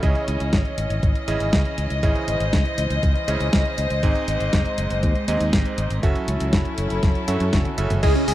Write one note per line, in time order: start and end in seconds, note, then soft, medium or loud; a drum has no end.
0.00 0.12 C#2 loud
0.00 1.25 C#3 medium
0.00 3.99 E3 medium
0.00 1.99 C#4 medium
0.00 1.25 C#4 medium
0.00 1.25 E4 medium
0.00 1.25 G#4 medium
0.00 5.99 D#5 medium
0.00 1.25 D#5 medium
0.00 kick loud
0.00 closed hi-hat soft
0.15 closed hi-hat soft
0.28 0.38 C#2 medium
0.28 closed hi-hat medium
0.40 0.50 C#2 medium
0.40 closed hi-hat soft
0.53 0.63 G#1 loud
0.53 kick loud
0.53 snare loud
0.53 closed hi-hat soft
0.65 closed hi-hat soft
0.78 0.87 G#1 medium
0.78 closed hi-hat medium
0.90 1.00 G#1 medium
0.90 closed hi-hat soft
1.03 1.13 G#1 medium
1.03 kick loud
1.03 closed hi-hat soft
1.15 closed hi-hat soft
1.28 1.38 G#1 medium
1.28 2.00 C#3 medium
1.28 2.00 C#4 medium
1.28 2.00 E4 medium
1.28 2.00 G#4 medium
1.28 2.00 D#5 loud
1.28 closed hi-hat medium
1.40 1.50 G#1 medium
1.40 closed hi-hat soft
1.53 1.62 C#2 medium
1.53 kick loud
1.53 snare loud
1.53 closed hi-hat soft
1.65 closed hi-hat soft
1.78 1.87 C#2 medium
1.78 closed hi-hat medium
1.90 2.00 C#2 medium
1.90 closed hi-hat soft
2.03 2.13 G#1 loud
2.03 3.25 C#3 medium
2.03 3.25 C#4 medium
2.03 3.25 E4 medium
2.03 3.25 G#4 medium
2.03 5.99 C5 medium
2.03 3.25 D#5 medium
2.03 kick loud
2.03 closed hi-hat medium
2.15 closed hi-hat soft
2.28 2.37 G#1 medium
2.28 closed hi-hat medium
2.40 2.50 G#1 medium
2.40 closed hi-hat medium
2.53 2.63 C#2 loud
2.53 kick medium
2.53 snare loud
2.53 closed hi-hat soft
2.65 closed hi-hat soft
2.78 2.87 C#2 medium
2.78 closed hi-hat medium
2.90 3.00 C#2 medium
2.90 closed hi-hat medium
3.03 3.13 C#2 loud
3.03 kick loud
3.03 closed hi-hat medium
3.15 closed hi-hat soft
3.28 3.37 C#2 medium
3.28 4.00 C#3 medium
3.28 4.00 C#4 medium
3.28 4.00 E4 medium
3.28 4.00 G#4 medium
3.28 4.00 D#5 loud
3.28 closed hi-hat medium
3.40 3.50 C#2 medium
3.40 closed hi-hat soft
3.53 3.63 C#2 loud
3.53 kick loud
3.53 snare loud
3.53 closed hi-hat medium
3.65 closed hi-hat soft
3.78 3.88 C#2 medium
3.78 closed hi-hat medium
3.90 4.00 C#2 medium
3.90 closed hi-hat soft
4.03 4.13 G#1 loud
4.03 5.25 G#2 medium
4.03 6.01 G#3 medium
4.03 5.25 C4 medium
4.03 5.25 D#4 medium
4.03 5.25 G#4 medium
4.03 5.25 D#5 medium
4.03 kick loud
4.03 closed hi-hat medium
4.15 closed hi-hat soft
4.28 4.37 G#1 medium
4.28 closed hi-hat medium
4.40 4.50 G#1 medium
4.40 closed hi-hat medium
4.53 4.63 F#1 loud
4.53 kick medium
4.53 snare loud
4.53 closed hi-hat medium
4.65 closed hi-hat soft
4.78 4.88 F#1 medium
4.78 closed hi-hat medium
4.90 5.00 F#1 medium
4.90 closed hi-hat medium
5.03 5.13 D#2 loud
5.03 kick loud
5.03 closed hi-hat medium
5.15 closed hi-hat soft
5.28 5.38 D#2 medium
5.28 6.00 G#2 medium
5.28 6.00 C4 medium
5.28 6.00 D#4 medium
5.28 6.00 G#4 medium
5.28 6.00 D#5 medium
5.28 closed hi-hat medium
5.40 5.50 D#2 medium
5.40 closed hi-hat medium
5.53 5.63 G#1 loud
5.53 kick loud
5.53 snare loud
5.53 closed hi-hat medium
5.66 closed hi-hat soft
5.78 5.87 G#1 medium
5.78 closed hi-hat medium
5.90 6.00 G#1 medium
5.90 closed hi-hat medium
6.03 6.13 F#1 loud
6.03 7.25 F#3 medium
6.03 8.01 F#3 medium
6.03 7.25 C#4 medium
6.03 8.01 C#4 medium
6.03 8.01 E4 medium
6.03 7.25 F#4 medium
6.03 7.25 A4 medium
6.03 8.01 A4 medium
6.03 7.25 E5 loud
6.03 kick loud
6.03 closed hi-hat medium
6.16 closed hi-hat soft
6.28 6.38 C#2 medium
6.28 closed hi-hat medium
6.40 6.50 C#2 medium
6.40 closed hi-hat medium
6.53 6.63 F#1 loud
6.53 kick medium
6.53 snare loud
6.53 closed hi-hat medium
6.65 closed hi-hat soft
6.78 6.88 F#1 medium
6.78 closed hi-hat loud
6.90 7.00 F#1 medium
6.90 closed hi-hat medium
7.03 7.13 F#1 medium
7.03 kick loud
7.03 snare medium
7.03 closed hi-hat medium
7.15 closed hi-hat soft
7.28 7.38 F#2 medium
7.28 7.75 F#3 medium
7.28 7.75 C#4 medium
7.28 7.75 F#4 medium
7.28 7.75 A4 medium
7.28 7.75 E5 medium
7.28 closed hi-hat medium
7.40 7.50 F#2 medium
7.40 closed hi-hat medium
7.53 7.63 F#1 loud
7.53 kick loud
7.53 snare loud
7.53 closed hi-hat medium
7.53 high tom medium
7.65 closed hi-hat soft
7.65 high tom medium
7.78 7.88 F#1 loud
7.78 8.00 C#3 medium
7.78 8.00 C#4 medium
7.78 8.00 F#4 medium
7.78 8.00 A4 medium
7.78 8.00 E5 medium
7.78 closed hi-hat medium
7.90 8.00 F#1 medium
7.90 closed hi-hat medium
7.90 mid tom medium
8.03 8.13 C#2 loud
8.03 8.34 C#3 medium
8.03 8.34 E3 medium
8.03 8.34 C#4 medium
8.03 8.34 E4 medium
8.03 8.34 G#4 medium
8.03 8.14 G#4 loud
8.03 8.34 D#5 medium
8.03 kick loud
8.03 closed hi-hat medium
8.03 crash loud
8.15 8.26 C#4 medium
8.15 closed hi-hat soft
8.28 8.34 C#2 medium
8.28 8.34 G#4 medium
8.28 open hi-hat loud